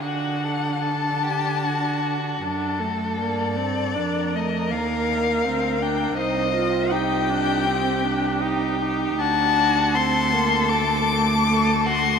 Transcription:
<<
  \new Staff \with { instrumentName = "Violin" } { \time 4/4 \key d \phrygian \tempo 4 = 79 fis''4 a''2~ a''8 r8 | d''4. ees''8 f''4. g''8 | ees''4 g''2~ g''8 r8 | a''4 c'''4 d'''4. c'''8 | }
  \new Staff \with { instrumentName = "Violin" } { \time 4/4 \key d \phrygian fis'8 a'8 a'8 g'8 fis'4 a'4~ | a'4 bes'2. | c''4 g'2 g'4 | fis'4 a'2 a'8 fis'8 | }
  \new Staff \with { instrumentName = "Viola" } { \time 4/4 \key d \phrygian d'2. d'8 a8 | bes8 c'8 d'8 a8 bes4 c'8 d'8 | ees'8 f'8 ees'8 d'8 c'8 d'8 ees'8 ees'8 | d'4 c'8 bes8 a8 a4. | }
  \new Staff \with { instrumentName = "Cello" } { \clef bass \time 4/4 \key d \phrygian d2. fis,4 | g,4 f,4 ees,4 d,4 | c,1 | d,1 | }
>>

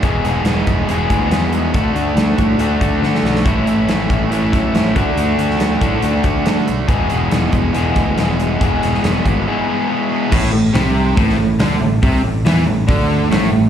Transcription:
<<
  \new Staff \with { instrumentName = "Overdriven electric guitar" } { \time 4/4 \key a \major \tempo 4 = 140 <e, b, e gis b gis'>8 <e gis b gis'>8 <e gis b gis'>8 <e, b, e gis b gis'>8 <e gis b gis'>8 <e gis b gis'>8 <e, b, e gis b gis'>8 <e gis b gis'>8 | <d a d' fis'>8 <a d' fis'>8 <d a d' fis'>8 <d a d' fis'>8 <d a d' fis'>8 <a d' fis'>8 <d a d' fis'>8 <a d' fis'>8 | <a, e a cis' e'>8 <a cis' e'>8 <e a cis' e'>8 <a, e a cis' e'>8 <e a cis' e'>8 <a cis' e'>8 <a, e a cis' e'>8 <d a d' fis'>8 | <d a d' fis'>8 <a d' fis'>8 <d a d' fis'>8 <d a d' fis'>8 <d a d' fis'>8 <a d' fis'>8 <d a d' fis'>8 <a d' fis'>8 |
<e, b, e gis b gis'>8 <e gis b gis'>8 <e gis b gis'>8 <e, b, e gis b gis'>8 <e gis b gis'>8 <e gis b gis'>8 <e, b, e gis b gis'>8 <e gis b gis'>8 | <e, b, e gis b gis'>8 <e gis b gis'>8 <e gis b gis'>8 <e, b, e gis b gis'>8 <e gis b gis'>8 <e gis b gis'>8 <e, b, e gis b gis'>8 <e gis b gis'>8 | a,8 a,8 c4 a,8 a,8 d8 a,8 | c8 a,8 e8 a,8 d4 a,8 a,8 | }
  \new Staff \with { instrumentName = "Overdriven electric guitar" } { \clef bass \time 4/4 \key a \major <e, b, e gis b gis'>2 <e, b, e gis b gis'>2 | <d a d' fis'>2 <d a d' fis'>2 | <a, e a cis' e'>2 <a, e a cis' e'>4. <d a d' fis'>8~ | <d a d' fis'>4. <d a d' fis'>2 r8 |
<e, b, e gis b gis'>2 <e, b, e gis b gis'>2 | <e, b, e gis b gis'>2 <e, b, e gis b gis'>2 | a,8 a,8 c4 a,8 a,8 d8 a,8 | c8 a,8 e8 a,8 d4 a,8 a,8 | }
  \new Staff \with { instrumentName = "Distorted electric guitar" } { \clef bass \time 4/4 \key a \major r1 | r1 | r1 | r1 |
r1 | r1 | a,8 a,8 c4 a,8 a,8 d8 a,8 | c8 a,8 e8 a,8 d4 a,8 a,8 | }
  \new Staff \with { instrumentName = "Fingered electric bass" } { \clef bass \time 4/4 \key a \major e,,8 e,,8 e,,8 e,,8 e,,8 d,8 e,4 | d,8 d,8 d,8 a,8 d,8 d,8 d8 b,,8 | a,,8 a,,8 a,,8 a,,8 a,,8 fis,8 a,,8 d,8 | d,8 d,8 d,8 a,8 d,8 d,8 d8 b,,8 |
e,,8 e,,8 e,,8 e,,8 e,,8 d,8 e,,4 | e,,8 e,,8 e,,8 gis,,8 r2 | a,,8 a,,8 c,4 a,,8 a,,8 d,8 a,,8 | c,8 a,,8 e,8 a,,8 d,4 a,,8 a,,8 | }
  \new DrumStaff \with { instrumentName = "Drums" } \drummode { \time 4/4 <hh bd>8 <hh sn>8 <hh sn>8 <hh bd>8 hh8 <hh bd>8 <hh sn>8 hh8 | <hh bd>8 hh8 <hh sn>8 <hh bd>8 hh8 <hh bd>8 sn16 sn16 sn16 sn16 | <hh bd>8 hh8 <hh sn>8 <hh bd>8 hh8 <hh bd>8 <hh sn>8 <hh bd>8 | hh8 hh16 sn16 <hh sn>8 <hh bd>8 hh8 <hh bd>8 <hh sn>8 hh8 |
<hh bd>8 hh8 <hh sn>8 <hh bd>8 hh8 <hh bd>8 <hh sn>8 hh8 | <hh bd>8 <hh sn>16 sn16 <hh sn>8 <hh bd>8 r4 r4 | <cymc bd>4 <hho sn>4 <hho bd>16 sn8. <hho sn>4 | <hho bd>4 <hho sn>4 <hho bd>4 <hho sn>4 | }
>>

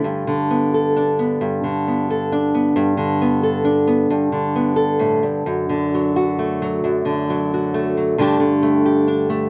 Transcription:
\new Staff \with { instrumentName = "Nylon-string guitar" } { \time 3/4 \key g \lydian \tempo 4 = 133 << { r4 b8 a'8 d'8 b8 | r4 b8 a'8 d'8 b8 | r4 b8 a'8 d'8 b8 | r4 b8 a'4. |
r4 fis8 fis'8 a8 fis8~ | fis4 fis8 fis'8 a8 fis8 | <d a d' g'>4 a8 g'8 d'8 a8 | } \\ { <g, d>8 d2~ d8 | g,8 d2~ d8 | g,8 d2~ d8 | g,8 d4. a,8 g,8 |
fis,8 d2~ d8 | fis,8 d2~ d8 | g,8 d2~ d8 | } >> }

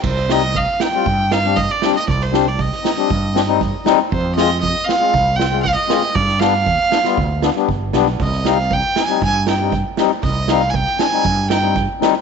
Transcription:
<<
  \new Staff \with { instrumentName = "Violin" } { \time 4/4 \key c \minor \tempo 4 = 118 c''8 ees''8 f''8 g''4 f''8 ees''16 d''8 ees''16 | d''16 c''8 d''16 ees''2~ ees''8 r8 | c''8 ees''8 ees''8 f''4 g''8 f''16 ees''8. | d''8 f''2 r4. |
ees''8 f''8 g''8 aes''8 aes''8 g''8 r4 | ees''8 f''16. aes''32 g''8 aes''4 g''8 r4 | }
  \new Staff \with { instrumentName = "Accordion" } { \time 4/4 \key c \minor r8 <g c' ees'>16 r8. <c' ees'>16 <g c' f'>16 r8 <c' ees'>16 <g c' d'>16 r8 <g c' d'>16 r16 | r8 <g c' d'>16 r8. <c' ees'>16 <g c' d'>16 r8 <c' d'>16 <g c' ees'>16 r8 <g c' ees'>16 r16 | r8 <aes c' f'>16 r8. <c' f'>16 <aes c' f'>16 r8 <c' f'>16 <aes c' f'>16 r8 <aes c' f'>16 r16 | r8 <g b d'>16 r8. <b d'>16 <g b f'>16 r8 <b d'>16 <g b d'>16 r8 <g b d'>16 r16 |
r8 <g c' ees'>16 r8. <c' ees'>16 <g c' ees'>16 r8 <c' ees'>16 <g c' ees'>16 r8 <g c' ees'>16 r16 | r8 <g c' ees'>16 r8. <c' d'>16 <g c' ees'>16 r8 <c' ees'>16 <g c' ees'>16 r8 <g c' ees'>16 r16 | }
  \new Staff \with { instrumentName = "Fretless electric bass" } { \clef bass \time 4/4 \key c \minor c,2 g,2 | c,2 g,2 | f,2 c,2 | g,2 d,4 g,,8 b,,8 |
c,2 g,2 | c,2 g,2 | }
  \new DrumStaff \with { instrumentName = "Drums" } \drummode { \time 4/4 <cymc bd>16 sn16 sn8 bd8 sn8 bd8 sn16 sn16 <bd sn>8 sn8 | bd16 sn16 sn8 bd16 sn16 sn8 bd8 sn8 <bd sn>8 sn8 | bd8 sn8 bd8 sn8 bd8 sn8 <bd sn>8 sn8 | bd16 sn16 sn8 bd8 sn16 sn16 bd8 sn16 sn16 bd8 sn16 sn16 |
<bd sn>16 sn16 sn8 bd8 sn8 bd8 sn8 <bd sn>8 sn8 | <bd sn>8 sn8 bd16 sn16 sn8 bd8 sn8 <bd sn>8 sn8 | }
>>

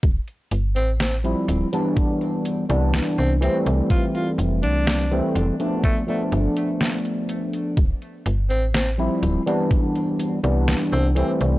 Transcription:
<<
  \new Staff \with { instrumentName = "Alto saxophone" } { \time 4/4 \key d \dorian \tempo 4 = 62 r8. c'16 c'16 r2 c'16 c'16 r16 | f'16 f'16 r16 d'8 r8. a16 a16 r4. | r8. c'16 c'16 r2 c'16 c'16 r16 | }
  \new Staff \with { instrumentName = "Tine electric piano" } { \time 4/4 \key d \dorian r4 r16 <f g c' e'>8 <e g b d'>4 <e g b d'>8. <e g a c'>8~ | <e g a c'>4~ <e g a c'>16 <e g a c'>8 <f a b d'>8 <f a b d'>4.~ <f a b d'>16 | r4 r16 <f g c' e'>8 <e g b d'>4 <e g b d'>8. <e g a c'>8 | }
  \new Staff \with { instrumentName = "FM bass" } { \clef bass \time 4/4 \key d \dorian d,,16 r16 g,,16 a,,8 r16 d,,16 r4 c,16 r16 c,16 r16 c,16 | r8 f,,16 c,8 r16 f,,16 r8. g,,16 r4 r16 | d,,16 r16 g,,16 a,,8 r16 d,,16 r4 c,16 r16 c,16 r16 c,16 | }
  \new DrumStaff \with { instrumentName = "Drums" } \drummode { \time 4/4 <hh bd>16 hh16 hh16 hh16 <hh sn>16 hh16 hh16 hh16 <hh bd>16 hh16 hh16 hh16 <hh sn>16 hh16 hh16 hh16 | <hh bd>16 hh16 hh16 hh16 <hh sn>16 hh16 hh16 hh16 <hh bd>16 hh16 hh16 hh16 <hh sn>16 hh16 hh16 hh16 | <hh bd>16 hh16 hh16 hh16 <hh sn>16 hh16 hh16 hh16 <hh bd>16 hh16 hh16 hh16 <hh sn>16 hh16 hh16 hh16 | }
>>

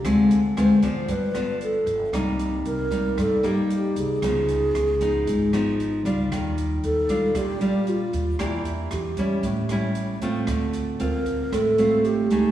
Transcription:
<<
  \new Staff \with { instrumentName = "Alto flute" } { \time 4/4 \key d \phrygian \tempo 4 = 115 r4 c''4 b'4 a'4 | r4 bes'4 a'8 g'4 aes'8~ | aes'2. r4 | r4 a'4 g'4 f'4 |
e'4 g'4. r4. | r4 bes'4 a'4 g'4 | }
  \new Staff \with { instrumentName = "Nylon-string guitar" } { \time 4/4 \key d \phrygian << { <aes c' f'>8 r8 <aes c' f'>8 <f b d'>4 <f b d'>4. | <g bes ees'>4. <g bes ees'>4 <g bes ees'>4. | <eis b dis'>4 r8 <eis b dis'>4 <eis b dis'>4 <g d' eis'>8~ | <g d' eis'>4. <g d' f'>4 <g d' f'>4. |
<bes d' g'>4 r8 <g cis' e'>4 <g cis' e'>4 <a c' f'>8~ | <a c' f'>4 <c' f'>4 r8 <a c' f'>4 <a ees' aes'>8 | } \\ { d2 g,2 | c2 g,2 | cis2 gis,2 | ees2 bes,2 |
e2 a,2 | d2 a,2 | } >> }
  \new Staff \with { instrumentName = "Upright bass" } { \clef bass \time 4/4 \key d \phrygian d,4 d,4 g,,4. g,,8 | c,4 c,4 g,4. c,8 | cis,4 cis,4 gis,,4. cis,8 | ees,4 ees,4 bes,,4. ees,8 |
e,4 e,4 a,,4. a,,8 | d,4 d,4 a,,4. d,8 | }
  \new DrumStaff \with { instrumentName = "Drums" } \drummode { \time 4/4 <hh bd ss>8 hh8 <hh ss>8 <hh bd>8 <hh bd>8 <hh ss>8 hh8 hh8 | <hh bd ss>8 hh8 hh8 <hh bd>8 <hh bd ss>8 hh8 hh8 hh8 | <hh bd ss>8 hh8 <hh ss>8 <hh bd>8 <hh bd>8 <hh ss>8 hh8 hh8 | <hh bd ss>8 hh8 hh8 <hh bd>8 <hh bd ss>8 hh8 hh8 hh8 |
<hh bd ss>8 hh8 <hh ss>8 <hh bd>8 <hh bd>8 <hh ss>8 hh8 hh8 | <hh bd ss>8 hh8 hh8 <hh bd>8 <hh bd ss>8 hh8 hh8 hh8 | }
>>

